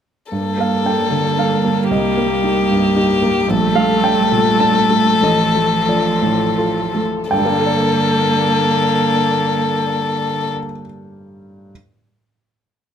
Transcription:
0.32 grand piano G2, cello G3, viola A#3, string section A#3 A4 D5, violin A4
0.58 grand piano A#3 F5
0.85 grand piano D4 A4 G5
1.10 grand piano D3
1.37 grand piano D4 A4 F5
1.64 grand piano A#3
1.91 grand piano C2 D#5, violin G4, string section G4 D#5
2.17 grand piano A#3
2.44 grand piano D#4 G4
2.71 grand piano G2
2.96 grand piano D#4 G4
3.22 grand piano A#3
3.48 grand piano A#1, cello G3, string section A3 A4, viola A3, violin A4
3.75 grand piano A3 F5
4.04 grand piano D4 A4 G5
4.32 grand piano A#2
4.60 grand piano D4 A4 A5
4.91 grand piano A3
5.22 grand piano A1 D#5, cello F3, string section F4
5.56 grand piano A3
5.89 grand piano F4 A4 D5
6.22 grand piano A2
6.57 grand piano F4 A4
6.94 grand piano A3
7.31 grand piano G2 G5, cello D3, string section A#3 A4 D5, viola A#3, violin A4
7.38 grand piano G3
7.45 grand piano A#3
7.52 grand piano D4
7.60 grand piano A4
7.67 grand piano D5

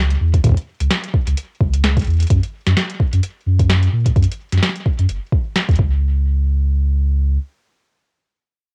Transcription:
Already playing: sub bass C#2
0.11 closed hi-hat
0.21 sub bass E2
0.34 kick, closed hi-hat
0.44 sub bass C#2, kick, closed hi-hat
0.47 kick
0.49 kick
0.52 kick
0.54 kick, closed hi-hat
0.80 sub bass C#2, closed hi-hat
0.91 snare, closed hi-hat
1.04 closed hi-hat
1.14 kick
1.27 sub bass C#2, closed hi-hat
1.37 closed hi-hat
1.60 sub bass C#2, kick
1.73 closed hi-hat
1.84 snare, closed hi-hat
1.97 kick, closed hi-hat
1.99 closed hi-hat
2.02 closed hi-hat
2.04 sub bass E2, closed hi-hat
2.07 closed hi-hat
2.10 closed hi-hat
2.13 closed hi-hat
2.17 closed hi-hat
2.20 closed hi-hat
2.22 closed hi-hat
2.27 sub bass F#2, kick, closed hi-hat
2.30 closed hi-hat
2.43 closed hi-hat
2.66 sub bass F#2, snare, closed hi-hat
2.77 snare, closed hi-hat
2.90 closed hi-hat
3.00 kick
3.13 sub bass F#2, closed hi-hat
3.23 closed hi-hat
3.46 sub bass F#2
3.59 kick, closed hi-hat
3.70 snare, closed hi-hat
3.83 closed hi-hat
3.93 sub bass A#2
4.06 kick, closed hi-hat
4.16 sub bass F#2, kick, closed hi-hat
4.23 closed hi-hat
4.32 closed hi-hat
4.52 sub bass F#2, snare, closed hi-hat
4.58 snare
4.63 snare, closed hi-hat
4.69 snare
4.76 closed hi-hat
4.86 kick
4.99 sub bass F#2, closed hi-hat
5.09 sub bass F#1, closed hi-hat
5.32 kick
5.56 snare, closed hi-hat
5.69 sub bass E2, kick, closed hi-hat
5.71 closed hi-hat
5.76 sub bass C#2, kick, closed hi-hat

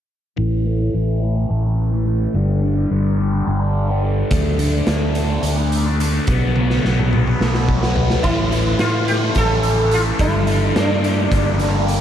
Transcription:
0.37 fingered electric bass A1, distorted electric guitar A2 E3 A3
0.65 distorted electric guitar A2 E3 A3
0.80 distorted electric guitar E3 A3
0.93 fingered electric bass A1, distorted electric guitar A2 E3 A3
1.21 distorted electric guitar A2 E3 A3
1.35 distorted electric guitar E3 A3
1.49 fingered electric bass A1, distorted electric guitar A2 E3 A3
1.63 distorted electric guitar E3 A3
1.91 distorted electric guitar E3 A3
2.05 distorted electric guitar A2 E3 A3
2.34 fingered electric bass G1, distorted electric guitar G2 D3 G3
2.62 distorted electric guitar G2 D3 G3
2.76 distorted electric guitar D3 G3
2.90 fingered electric bass G1, distorted electric guitar G2 D3 G3
3.18 distorted electric guitar G2 D3 G3
3.32 distorted electric guitar D3 G3
3.47 fingered electric bass G1, distorted electric guitar G2 D3 G3
3.60 distorted electric guitar D3 G3
3.88 distorted electric guitar D3 G3
4.02 distorted electric guitar G2 D3 G3
4.30 fingered electric bass D2, distorted electric guitar D3 A3 D4, kick, closed hi-hat
4.58 distorted electric guitar D3 A3 D4, closed hi-hat
4.73 distorted electric guitar A3 D4
4.87 fingered electric bass D2, distorted electric guitar D3 A3 D4, snare, closed hi-hat
5.15 distorted electric guitar D3 A3 D4, closed hi-hat
5.29 distorted electric guitar A3 D4
5.43 fingered electric bass D2, distorted electric guitar D3 A3 D4, closed hi-hat
5.57 distorted electric guitar A3 D4
5.72 closed hi-hat
5.86 distorted electric guitar A3 D4
5.99 distorted electric guitar D3 A3 D4, closed hi-hat
6.27 fingered electric bass B1, distorted electric guitar B2 F#3 B3, kick, closed hi-hat
6.56 distorted electric guitar B2 F#3 B3, high tom
6.70 distorted electric guitar F#3 B3, snare
6.84 fingered electric bass B1, distorted electric guitar B2 F#3 B3, snare
6.99 mid tom
7.11 distorted electric guitar B2 F#3 B3, mid tom
7.26 distorted electric guitar F#3 B3, mid tom
7.39 fingered electric bass B1, distorted electric guitar B2 F#3 B3, snare
7.54 distorted electric guitar F#3 B3, snare
7.69 kick
7.82 distorted electric guitar F#3 B3, snare
7.95 distorted electric guitar B2 F#3 B3, floor tom
8.10 snare
8.23 fingered electric bass A1, distorted electric guitar A2, sitar E4, kick, crash
8.52 distorted electric guitar E3, closed hi-hat
8.79 fingered electric bass A2, distorted electric guitar A3, sitar F4, snare, closed hi-hat
9.08 distorted electric guitar E4, sitar G4, closed hi-hat
9.35 fingered electric bass A1, distorted electric guitar C#4, sitar A4, kick, closed hi-hat
9.63 distorted electric guitar E3, closed hi-hat
9.91 distorted electric guitar A3, sitar F4, closed hi-hat
10.19 fingered electric bass G1, distorted electric guitar G2, sitar E4, kick, closed hi-hat
10.47 distorted electric guitar G3, closed hi-hat
10.75 fingered electric bass G2, distorted electric guitar A#3, sitar D4, snare, closed hi-hat
11.03 distorted electric guitar G4, closed hi-hat
11.31 fingered electric bass G1, distorted electric guitar D4, kick, closed hi-hat
11.59 distorted electric guitar G3, snare, closed hi-hat
11.87 distorted electric guitar A#3, closed hi-hat

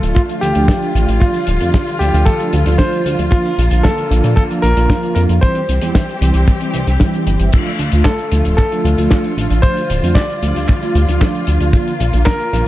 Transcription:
Already playing: string section D3 F3 A3 F4, analog polysynth F3 A3 D4 F4, electric grand piano A4
0.03 analog synth bass D1, closed hi-hat
0.15 electric grand piano F4, kick, closed hi-hat
0.29 analog polysynth F3 A3 D4 F4, closed hi-hat
0.41 analog synth bass D2, electric grand piano G4, closed hi-hat
0.55 analog synth bass D2, analog polysynth F3 A3 D4 F4, closed hi-hat
0.68 kick, snare, closed hi-hat
0.82 closed hi-hat
0.95 analog synth bass A1, analog polysynth A3 D4, closed hi-hat
1.08 analog synth bass A1, closed hi-hat
1.20 analog polysynth F3 A3 D4 F4, string section G3, electric grand piano F4, kick, closed hi-hat
1.34 closed hi-hat
1.47 analog synth bass D1, closed hi-hat
1.60 analog synth bass F2, analog polysynth F3 A3 D4 F4, closed hi-hat
1.74 kick, snare, closed hi-hat
1.87 closed hi-hat
1.99 analog synth bass D2, analog polysynth F3 A3 D4 F4, electric grand piano G4, closed hi-hat
2.14 analog synth bass D2, closed hi-hat
2.25 electric grand piano A4, kick, closed hi-hat
2.40 analog polysynth F3 A3 D4 F4, closed hi-hat
2.53 analog synth bass D2, closed hi-hat
2.66 analog synth bass D2, analog polysynth F3 A3 D4 F4, snare, closed hi-hat
2.78 electric grand piano C5, kick, snare, closed hi-hat
2.92 closed hi-hat
3.06 analog synth bass D2, analog polysynth D4, closed hi-hat
3.19 analog synth bass D2, closed hi-hat
3.31 string section D3 A#3, analog polysynth A#3 D4, electric grand piano F4, kick, closed hi-hat
3.45 closed hi-hat
3.58 analog synth bass A#1, closed hi-hat
3.71 analog synth bass A#1, analog polysynth F3 A#3 D4 F4, closed hi-hat
3.83 electric grand piano A4, kick, snare, closed hi-hat
3.98 closed hi-hat
4.11 analog synth bass A#1, analog polysynth F3 A#3 D4 F4, snare, closed hi-hat
4.24 analog synth bass A#2, closed hi-hat
4.36 electric grand piano A4, kick, closed hi-hat
4.50 analog polysynth F3 A#3 D4 F4, closed hi-hat
4.62 analog synth bass A#1, electric grand piano A#4, closed hi-hat
4.77 analog synth bass A#1, analog polysynth F3 A#3 D4 F4, closed hi-hat
4.90 kick, snare, closed hi-hat
5.03 closed hi-hat
5.15 analog synth bass F2, analog polysynth F3 A#3 D4 F4, electric grand piano A#4, closed hi-hat
5.29 analog synth bass F2, closed hi-hat
5.41 analog polysynth E3 G3 C4 E4, string section E3 G3 C4 G4, electric grand piano C5, kick, closed hi-hat
5.55 closed hi-hat
5.69 analog synth bass C2, closed hi-hat
5.82 analog synth bass E2, analog polysynth E3 G3 C4 E4, closed hi-hat
5.95 kick, snare, closed hi-hat
6.09 closed hi-hat
6.21 analog synth bass C2, analog polysynth E3 G3 C4 E4, closed hi-hat
6.34 analog synth bass C2, closed hi-hat
6.48 kick, closed hi-hat
6.61 analog polysynth E3 G3 C4 E4, closed hi-hat
6.74 analog synth bass C2, closed hi-hat
6.87 analog synth bass C2, snare, closed hi-hat
7.00 analog polysynth E3 G3 C4 E4, kick, snare, closed hi-hat
7.14 closed hi-hat
7.27 analog synth bass G1, closed hi-hat
7.40 analog synth bass G1, analog polysynth E3 G3 C4 E4, closed hi-hat
7.52 string section D3 F3 A3 F4, analog polysynth F3 A3 D4 F4, kick, closed hi-hat, crash
7.67 closed hi-hat
7.79 analog synth bass D2, closed hi-hat
7.92 analog synth bass D2, analog polysynth F3 A3 D4 F4, closed hi-hat
8.04 electric grand piano A4, kick, snare, clap, closed hi-hat
8.18 closed hi-hat
8.32 analog synth bass D2, analog polysynth F3 A3 D4 F4, snare, closed hi-hat
8.45 analog synth bass D1, closed hi-hat
8.57 electric grand piano A4, kick, clap, closed hi-hat
8.71 analog polysynth F3 A3 D4 F4, closed hi-hat
8.85 analog synth bass D2, closed hi-hat
8.98 analog synth bass D2, analog polysynth F3 A3 D4 F4, closed hi-hat
9.11 kick, snare, clap, closed hi-hat
9.24 closed hi-hat
9.37 analog synth bass A1, analog polysynth F3 A3 D4 F4, closed hi-hat
9.50 analog synth bass A1, closed hi-hat
9.62 analog polysynth F3 A3, string section G3, electric grand piano C5, kick, closed hi-hat
9.77 closed hi-hat
9.90 analog synth bass D1, closed hi-hat
10.03 analog synth bass F2, analog polysynth F3 A3 D4 F4, closed hi-hat
10.15 electric grand piano D5, kick, snare, clap, closed hi-hat
10.30 closed hi-hat
10.42 analog synth bass D2, analog polysynth F3 A3 D4 F4, closed hi-hat
10.56 analog synth bass D2, closed hi-hat
10.68 kick, clap, closed hi-hat
10.82 analog polysynth F3 A3 D4 F4, closed hi-hat
10.95 analog synth bass D2, closed hi-hat
11.08 analog synth bass D2, analog polysynth F3 A3 D4 F4, snare, closed hi-hat
11.21 kick, snare, clap, closed hi-hat
11.35 closed hi-hat
11.47 analog synth bass D2, analog polysynth F3 A3 D4 F4, closed hi-hat
11.60 analog synth bass D2, closed hi-hat
11.73 analog polysynth F3 A#3 D4 F4, string section A#3, kick, closed hi-hat
11.88 closed hi-hat
12.00 analog synth bass A#1, closed hi-hat
12.13 analog synth bass A#1, analog polysynth F3 A#3 D4 F4, closed hi-hat
12.25 electric grand piano A#4, kick, snare, clap, closed hi-hat
12.40 closed hi-hat
12.53 analog synth bass A#1, analog polysynth F3 A#3 D4 F4, snare, closed hi-hat

